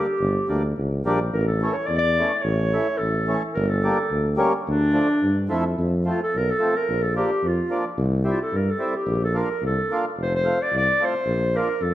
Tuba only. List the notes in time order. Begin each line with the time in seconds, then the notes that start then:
0.20 G1
0.49 D2
0.78 C#2
1.05 A#1
1.33 A1
1.89 E2
2.44 A1
3.00 A1
3.56 G1
4.11 D2
4.67 D2
5.22 G2
5.51 F2
5.78 F2
6.35 B1
6.89 A#1
7.43 F2
7.98 C2
8.53 G2
9.06 A#1
9.62 C2
10.17 F1
10.72 C2
11.26 A#1
11.81 F2